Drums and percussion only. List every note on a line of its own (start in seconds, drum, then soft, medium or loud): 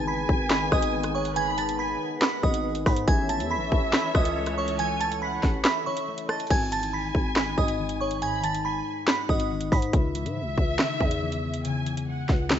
0.29 kick loud
0.51 snare loud
0.51 clap loud
0.72 kick medium
0.72 cross-stick loud
0.82 closed hi-hat medium
1.03 cross-stick medium
1.03 closed hi-hat medium
1.25 closed hi-hat medium
1.36 closed hi-hat medium
1.58 closed hi-hat medium
1.69 closed hi-hat medium
2.22 snare loud
2.22 clap loud
2.43 kick medium
2.54 closed hi-hat medium
2.75 closed hi-hat medium
2.86 kick loud
2.86 cross-stick loud
2.86 open hi-hat medium
2.96 closed hi-hat medium
3.08 kick loud
3.08 closed hi-hat medium
3.29 closed hi-hat medium
3.40 closed hi-hat medium
3.72 kick loud
3.93 snare loud
3.93 clap loud
4.15 kick loud
4.15 cross-stick loud
4.25 closed hi-hat medium
4.46 cross-stick medium
4.46 closed hi-hat medium
4.68 closed hi-hat medium
4.79 closed hi-hat medium
5.01 closed hi-hat medium
5.12 closed hi-hat medium
5.43 kick loud
5.43 snare medium
5.65 snare loud
5.65 clap loud
5.97 closed hi-hat medium
6.18 closed hi-hat medium
6.29 cross-stick loud
6.40 closed hi-hat medium
6.47 kick loud
6.47 closed hi-hat medium
6.50 closed hi-hat medium
6.50 crash medium
6.54 closed hi-hat soft
6.72 closed hi-hat medium
6.83 closed hi-hat medium
7.15 kick medium
7.36 snare loud
7.36 clap loud
7.58 kick medium
7.68 closed hi-hat medium
7.89 closed hi-hat medium
8.11 closed hi-hat medium
8.22 closed hi-hat medium
8.44 closed hi-hat medium
8.55 closed hi-hat medium
9.08 snare loud
9.08 clap loud
9.29 kick medium
9.40 closed hi-hat medium
9.61 closed hi-hat medium
9.72 kick loud
9.72 open hi-hat medium
9.82 closed hi-hat medium
9.93 kick loud
9.93 closed hi-hat medium
10.15 closed hi-hat medium
10.26 closed hi-hat medium
10.58 kick medium
10.79 snare loud
10.79 clap loud
11.01 kick loud
11.11 closed hi-hat medium
11.32 closed hi-hat medium
11.54 closed hi-hat medium
11.65 closed hi-hat medium
11.86 closed hi-hat medium
11.97 closed hi-hat medium
12.29 kick loud
12.29 snare medium
12.50 snare loud
12.50 clap loud